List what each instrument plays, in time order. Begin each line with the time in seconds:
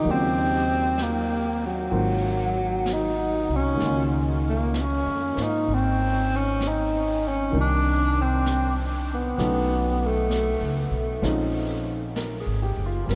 Already playing: tenor saxophone D#4
0.00 grand piano D#3 F#3
0.05 upright bass D#2, grand piano C#3 A#3, brush sweep
0.11 tenor saxophone C4, grand piano F4
0.98 brush sweep, snare, hi-hat pedal
1.03 tenor saxophone A#3
1.66 tenor saxophone F#3
1.91 upright bass G#1, grand piano D#3 F#3 A#3 F4 C5, brush sweep
2.86 brush sweep, snare, hi-hat pedal
2.93 tenor saxophone D#4
3.49 upright bass C2
3.56 tenor saxophone C#4
3.74 grand piano D#3 G#3
3.80 upright bass C#2, grand piano C#3 A#3, brush sweep, snare
3.86 grand piano F4
4.50 tenor saxophone A#3
4.74 brush sweep, snare, hi-hat pedal
4.81 tenor saxophone C#4
5.06 upright bass F2
5.35 upright bass G#2, grand piano A#3 D#4 F4 C5, snare
5.43 tenor saxophone D#4
5.68 upright bass G#1, brush sweep
5.74 tenor saxophone C4
6.36 tenor saxophone C#4
6.61 brush sweep, snare, hi-hat pedal
6.68 tenor saxophone D#4
7.28 tenor saxophone C#4
7.51 upright bass C2, grand piano C3 D#3 G3 A#4, brush sweep
7.56 grand piano D4
7.61 tenor saxophone D4
8.22 tenor saxophone C4
8.46 brush sweep, snare, hi-hat pedal
9.14 tenor saxophone B3
9.38 upright bass B1, grand piano F#3 A3 B3 C#4 D#4, brush sweep, snare
10.06 tenor saxophone A3
10.31 brush sweep, snare, hi-hat pedal
10.61 upright bass C#2
10.91 upright bass B1
11.22 upright bass A#1, grand piano F3 G#3 C4 C#4 D#4, brush sweep, snare
12.16 grand piano A#4, brush sweep, snare, hi-hat pedal
12.40 grand piano G#4
12.46 upright bass G#1
12.62 grand piano G4
12.77 upright bass F#1
12.86 grand piano F4
13.03 grand piano F3 G3
13.09 upright bass G1, grand piano B3 A#4, brush sweep, snare